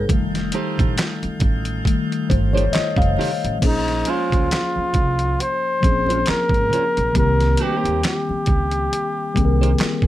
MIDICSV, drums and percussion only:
0, 0, Header, 1, 2, 480
1, 0, Start_track
1, 0, Tempo, 882353
1, 49, Time_signature, 4, 2, 24, 8
1, 5478, End_track
2, 0, Start_track
2, 0, Title_t, "Drums"
2, 47, Note_on_c, 9, 64, 68
2, 50, Note_on_c, 9, 36, 113
2, 52, Note_on_c, 9, 42, 77
2, 102, Note_off_c, 9, 64, 0
2, 104, Note_off_c, 9, 36, 0
2, 107, Note_off_c, 9, 42, 0
2, 191, Note_on_c, 9, 42, 35
2, 192, Note_on_c, 9, 38, 33
2, 245, Note_off_c, 9, 42, 0
2, 246, Note_off_c, 9, 38, 0
2, 283, Note_on_c, 9, 42, 71
2, 337, Note_off_c, 9, 42, 0
2, 422, Note_on_c, 9, 63, 48
2, 430, Note_on_c, 9, 36, 96
2, 433, Note_on_c, 9, 42, 39
2, 477, Note_off_c, 9, 63, 0
2, 485, Note_off_c, 9, 36, 0
2, 487, Note_off_c, 9, 42, 0
2, 528, Note_on_c, 9, 62, 29
2, 531, Note_on_c, 9, 42, 90
2, 537, Note_on_c, 9, 39, 97
2, 539, Note_on_c, 9, 38, 123
2, 582, Note_off_c, 9, 62, 0
2, 585, Note_off_c, 9, 42, 0
2, 592, Note_off_c, 9, 39, 0
2, 593, Note_off_c, 9, 38, 0
2, 667, Note_on_c, 9, 63, 51
2, 669, Note_on_c, 9, 42, 31
2, 721, Note_off_c, 9, 63, 0
2, 723, Note_off_c, 9, 42, 0
2, 760, Note_on_c, 9, 62, 28
2, 760, Note_on_c, 9, 64, 60
2, 763, Note_on_c, 9, 42, 54
2, 769, Note_on_c, 9, 36, 79
2, 814, Note_off_c, 9, 62, 0
2, 814, Note_off_c, 9, 64, 0
2, 817, Note_off_c, 9, 42, 0
2, 823, Note_off_c, 9, 36, 0
2, 898, Note_on_c, 9, 42, 43
2, 953, Note_off_c, 9, 42, 0
2, 1007, Note_on_c, 9, 36, 84
2, 1019, Note_on_c, 9, 42, 81
2, 1062, Note_off_c, 9, 36, 0
2, 1073, Note_off_c, 9, 42, 0
2, 1155, Note_on_c, 9, 42, 33
2, 1209, Note_off_c, 9, 42, 0
2, 1251, Note_on_c, 9, 36, 93
2, 1258, Note_on_c, 9, 42, 61
2, 1305, Note_off_c, 9, 36, 0
2, 1312, Note_off_c, 9, 42, 0
2, 1378, Note_on_c, 9, 63, 68
2, 1400, Note_on_c, 9, 42, 48
2, 1433, Note_off_c, 9, 63, 0
2, 1455, Note_off_c, 9, 42, 0
2, 1485, Note_on_c, 9, 42, 79
2, 1486, Note_on_c, 9, 62, 28
2, 1497, Note_on_c, 9, 39, 88
2, 1498, Note_on_c, 9, 38, 116
2, 1540, Note_off_c, 9, 42, 0
2, 1540, Note_off_c, 9, 62, 0
2, 1551, Note_off_c, 9, 39, 0
2, 1553, Note_off_c, 9, 38, 0
2, 1613, Note_on_c, 9, 36, 94
2, 1623, Note_on_c, 9, 63, 60
2, 1642, Note_on_c, 9, 42, 35
2, 1668, Note_off_c, 9, 36, 0
2, 1677, Note_off_c, 9, 63, 0
2, 1696, Note_off_c, 9, 42, 0
2, 1723, Note_on_c, 9, 62, 31
2, 1723, Note_on_c, 9, 64, 73
2, 1745, Note_on_c, 9, 38, 32
2, 1746, Note_on_c, 9, 46, 42
2, 1777, Note_off_c, 9, 62, 0
2, 1777, Note_off_c, 9, 64, 0
2, 1799, Note_off_c, 9, 38, 0
2, 1800, Note_off_c, 9, 46, 0
2, 1874, Note_on_c, 9, 42, 43
2, 1929, Note_off_c, 9, 42, 0
2, 1970, Note_on_c, 9, 36, 107
2, 1970, Note_on_c, 9, 49, 88
2, 1973, Note_on_c, 9, 42, 71
2, 2024, Note_off_c, 9, 36, 0
2, 2025, Note_off_c, 9, 49, 0
2, 2028, Note_off_c, 9, 42, 0
2, 2111, Note_on_c, 9, 42, 31
2, 2112, Note_on_c, 9, 38, 31
2, 2165, Note_off_c, 9, 42, 0
2, 2167, Note_off_c, 9, 38, 0
2, 2204, Note_on_c, 9, 42, 75
2, 2205, Note_on_c, 9, 62, 25
2, 2259, Note_off_c, 9, 42, 0
2, 2260, Note_off_c, 9, 62, 0
2, 2340, Note_on_c, 9, 63, 40
2, 2352, Note_on_c, 9, 36, 92
2, 2357, Note_on_c, 9, 42, 40
2, 2395, Note_off_c, 9, 63, 0
2, 2406, Note_off_c, 9, 36, 0
2, 2411, Note_off_c, 9, 42, 0
2, 2455, Note_on_c, 9, 42, 84
2, 2462, Note_on_c, 9, 39, 87
2, 2463, Note_on_c, 9, 38, 114
2, 2510, Note_off_c, 9, 42, 0
2, 2516, Note_off_c, 9, 39, 0
2, 2517, Note_off_c, 9, 38, 0
2, 2589, Note_on_c, 9, 63, 53
2, 2643, Note_off_c, 9, 63, 0
2, 2682, Note_on_c, 9, 64, 55
2, 2686, Note_on_c, 9, 42, 54
2, 2691, Note_on_c, 9, 36, 70
2, 2736, Note_off_c, 9, 64, 0
2, 2741, Note_off_c, 9, 42, 0
2, 2746, Note_off_c, 9, 36, 0
2, 2823, Note_on_c, 9, 42, 41
2, 2877, Note_off_c, 9, 42, 0
2, 2932, Note_on_c, 9, 62, 23
2, 2940, Note_on_c, 9, 42, 78
2, 2986, Note_off_c, 9, 62, 0
2, 2994, Note_off_c, 9, 42, 0
2, 3168, Note_on_c, 9, 62, 29
2, 3171, Note_on_c, 9, 36, 90
2, 3178, Note_on_c, 9, 42, 60
2, 3223, Note_off_c, 9, 62, 0
2, 3226, Note_off_c, 9, 36, 0
2, 3233, Note_off_c, 9, 42, 0
2, 3300, Note_on_c, 9, 63, 63
2, 3320, Note_on_c, 9, 42, 47
2, 3354, Note_off_c, 9, 63, 0
2, 3374, Note_off_c, 9, 42, 0
2, 3404, Note_on_c, 9, 42, 73
2, 3416, Note_on_c, 9, 39, 87
2, 3417, Note_on_c, 9, 38, 110
2, 3459, Note_off_c, 9, 42, 0
2, 3470, Note_off_c, 9, 39, 0
2, 3472, Note_off_c, 9, 38, 0
2, 3533, Note_on_c, 9, 36, 89
2, 3543, Note_on_c, 9, 63, 55
2, 3560, Note_on_c, 9, 42, 31
2, 3587, Note_off_c, 9, 36, 0
2, 3597, Note_off_c, 9, 63, 0
2, 3614, Note_off_c, 9, 42, 0
2, 3644, Note_on_c, 9, 64, 69
2, 3661, Note_on_c, 9, 42, 61
2, 3699, Note_off_c, 9, 64, 0
2, 3715, Note_off_c, 9, 42, 0
2, 3792, Note_on_c, 9, 42, 41
2, 3847, Note_off_c, 9, 42, 0
2, 3889, Note_on_c, 9, 36, 104
2, 3889, Note_on_c, 9, 62, 30
2, 3890, Note_on_c, 9, 42, 76
2, 3944, Note_off_c, 9, 36, 0
2, 3944, Note_off_c, 9, 42, 0
2, 3944, Note_off_c, 9, 62, 0
2, 4028, Note_on_c, 9, 42, 31
2, 4030, Note_on_c, 9, 38, 32
2, 4083, Note_off_c, 9, 42, 0
2, 4084, Note_off_c, 9, 38, 0
2, 4120, Note_on_c, 9, 42, 75
2, 4175, Note_off_c, 9, 42, 0
2, 4264, Note_on_c, 9, 63, 46
2, 4273, Note_on_c, 9, 42, 42
2, 4319, Note_off_c, 9, 63, 0
2, 4327, Note_off_c, 9, 42, 0
2, 4371, Note_on_c, 9, 42, 84
2, 4377, Note_on_c, 9, 39, 84
2, 4379, Note_on_c, 9, 38, 117
2, 4425, Note_off_c, 9, 42, 0
2, 4432, Note_off_c, 9, 39, 0
2, 4433, Note_off_c, 9, 38, 0
2, 4510, Note_on_c, 9, 63, 53
2, 4564, Note_off_c, 9, 63, 0
2, 4603, Note_on_c, 9, 42, 53
2, 4606, Note_on_c, 9, 62, 26
2, 4606, Note_on_c, 9, 64, 60
2, 4610, Note_on_c, 9, 36, 74
2, 4657, Note_off_c, 9, 42, 0
2, 4661, Note_off_c, 9, 62, 0
2, 4661, Note_off_c, 9, 64, 0
2, 4664, Note_off_c, 9, 36, 0
2, 4741, Note_on_c, 9, 42, 40
2, 4795, Note_off_c, 9, 42, 0
2, 4855, Note_on_c, 9, 62, 25
2, 4857, Note_on_c, 9, 42, 80
2, 4909, Note_off_c, 9, 62, 0
2, 4912, Note_off_c, 9, 42, 0
2, 5091, Note_on_c, 9, 36, 87
2, 5092, Note_on_c, 9, 62, 30
2, 5098, Note_on_c, 9, 42, 61
2, 5145, Note_off_c, 9, 36, 0
2, 5146, Note_off_c, 9, 62, 0
2, 5152, Note_off_c, 9, 42, 0
2, 5229, Note_on_c, 9, 63, 63
2, 5239, Note_on_c, 9, 42, 45
2, 5283, Note_off_c, 9, 63, 0
2, 5293, Note_off_c, 9, 42, 0
2, 5323, Note_on_c, 9, 42, 66
2, 5334, Note_on_c, 9, 39, 93
2, 5336, Note_on_c, 9, 38, 116
2, 5377, Note_off_c, 9, 42, 0
2, 5389, Note_off_c, 9, 39, 0
2, 5390, Note_off_c, 9, 38, 0
2, 5451, Note_on_c, 9, 36, 81
2, 5478, Note_off_c, 9, 36, 0
2, 5478, End_track
0, 0, End_of_file